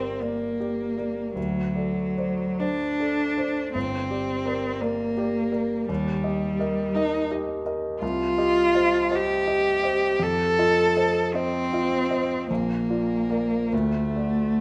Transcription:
Already playing: grand piano G1 G4 A#4 D5, cello C4
0.21 cello A#3, grand piano A#4 D5
0.60 grand piano G4 D5
0.98 grand piano A#4 D5
1.35 grand piano D2, cello F#3
1.76 grand piano A4 D5
2.17 grand piano C5 D5
2.59 cello D4, grand piano C5 D5
3.00 grand piano A4 D5
3.38 grand piano C5 D5
3.73 grand piano G1, cello C4
4.10 grand piano G4 D5
4.45 grand piano A#4 D5
4.81 cello A#3, grand piano A#4 D5
5.17 grand piano G4 D5
5.52 grand piano A#4 D5
5.88 grand piano D#2, cello G3
6.24 grand piano G4 D#5
6.59 grand piano A#4 D#5
6.94 cello D#4, grand piano A#4 D#5
7.31 grand piano G4 D#5
7.66 grand piano A#4 D#5
8.01 grand piano C2, cello F4
8.38 grand piano G4 D#5
8.75 grand piano C5 D#5
9.11 grand piano C5 D#5
9.15 cello G4
9.47 grand piano G4 D#5
9.83 grand piano C5 D#5
10.20 grand piano F2, cello A4
10.59 grand piano F4 D#5
10.96 grand piano C5 D#5
11.34 cello C4, grand piano C5 D#5
11.73 grand piano F4 D#5
12.10 grand piano C5 D#5
12.49 grand piano A#1, cello A#3
12.90 grand piano F4 D5
13.29 grand piano A#4 D5
13.73 grand piano D2, cello A3
14.15 grand piano F#4 D5

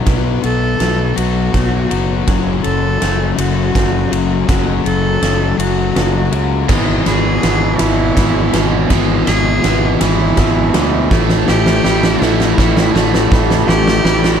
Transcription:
Already playing: clean electric guitar F#3 A3
0.06 fingered electric bass B1, clean electric guitar B2, overdriven electric guitar B2 F#3 B3, kick, snare, ride
0.42 fingered electric bass B1, overdriven electric guitar B2 F#3 B3, cello A4, ride
0.78 fingered electric bass B1, overdriven electric guitar B2 F#3 B3, clean electric guitar A3, snare, ride
1.15 fingered electric bass B1, overdriven electric guitar B2 F#3 B3, clean electric guitar F#3, cello F#4, ride
1.52 fingered electric bass B1, overdriven electric guitar B2 F#3 B3, clean electric guitar A3, kick, snare, ride
1.89 fingered electric bass F#1, overdriven electric guitar B2 F#3 B3, clean electric guitar F#3, ride
2.26 fingered electric bass F#1, overdriven electric guitar F#2 C#3 F#3, clean electric guitar F#3, kick, snare, ride
2.63 fingered electric bass F#1, overdriven electric guitar F#2 C#3 F#3, cello A4, ride
3.00 fingered electric bass F#1, overdriven electric guitar F#2 C#3 F#3, clean electric guitar A3, snare, ride
3.37 fingered electric bass F#1, overdriven electric guitar F#2 C#3 F#3, clean electric guitar F#3, cello F#4, ride
3.74 fingered electric bass F#1, overdriven electric guitar F#2 C#3 F#3, clean electric guitar A3, kick, snare, ride
4.10 fingered electric bass F#1, overdriven electric guitar F#2 C#3 F#3, clean electric guitar F#3, ride
4.48 fingered electric bass F#1, overdriven electric guitar F#2 C#3 F#3, clean electric guitar F#3, kick, snare, ride
4.84 fingered electric bass F#1, overdriven electric guitar F#2 C#3 F#3, cello A4, ride
5.21 fingered electric bass F#1, overdriven electric guitar F#2 C#3 F#3, clean electric guitar A3, snare, ride
5.58 fingered electric bass F#1, overdriven electric guitar F#2 C#3 F#3, clean electric guitar F#3, cello F#4, ride
5.95 fingered electric bass F#1, overdriven electric guitar F#2 C#3 F#3, clean electric guitar A3, snare, ride
6.32 fingered electric bass C#2, overdriven electric guitar F#2 C#3 F#3, clean electric guitar F#3, ride
6.68 fingered electric bass G#1, overdriven electric guitar E2 B2 E3, clean electric guitar G#3, kick, snare, crash
7.05 fingered electric bass G#1, overdriven electric guitar E2 B2 E3, cello G#4, snare, ride
7.43 fingered electric bass G#1, overdriven electric guitar E2 B2 E3, clean electric guitar B3, snare, ride
7.79 fingered electric bass G#1, overdriven electric guitar E2 B2 E3, clean electric guitar G#3, cello E4, snare, ride
8.16 fingered electric bass G#1, overdriven electric guitar E2 B2 E3, clean electric guitar B3, kick, snare, ride
8.52 fingered electric bass G#1, overdriven electric guitar E2 B2 E3, clean electric guitar G#3, snare, ride
8.89 fingered electric bass G#1, overdriven electric guitar E2 B2 E3, clean electric guitar G#3, kick, snare, ride
9.27 fingered electric bass G#1, overdriven electric guitar E2 B2 E3, cello G#4, snare, ride
9.63 fingered electric bass G#1, overdriven electric guitar E2 B2 E3, clean electric guitar B3, snare, ride
10.00 fingered electric bass G#1, overdriven electric guitar E2 B2 E3, clean electric guitar G#3, cello E4, snare, ride
10.36 fingered electric bass G#1, overdriven electric guitar E2 B2 E3, clean electric guitar B3, kick, snare, ride
10.74 fingered electric bass D2, overdriven electric guitar E2 B2 E3, clean electric guitar G#3, snare, ride
11.10 fingered electric bass A1, clean electric guitar A2, overdriven electric guitar A2 E3 A3, kick, snare
11.29 snare
11.48 fingered electric bass A1, overdriven electric guitar A2 E3 A3, cello G4, snare
11.66 snare
11.84 fingered electric bass A1, overdriven electric guitar A2 E3 A3, clean electric guitar G3, snare
12.03 snare
12.21 fingered electric bass A1, overdriven electric guitar A2 E3 A3, clean electric guitar D3, cello E4, snare
12.40 snare
12.57 fingered electric bass A1, overdriven electric guitar A2 E3 A3, clean electric guitar G3, kick, snare
12.77 snare
12.93 fingered electric bass A1, overdriven electric guitar A2 E3 A3, clean electric guitar D3, snare
13.14 snare
13.30 fingered electric bass A1, overdriven electric guitar A2 E3 A3, clean electric guitar A2, kick, snare
13.50 snare
13.67 fingered electric bass A1, overdriven electric guitar A2 E3 A3, cello G4, snare
13.88 snare
14.03 fingered electric bass A1, overdriven electric guitar A2 E3 A3, clean electric guitar G3, snare
14.24 snare

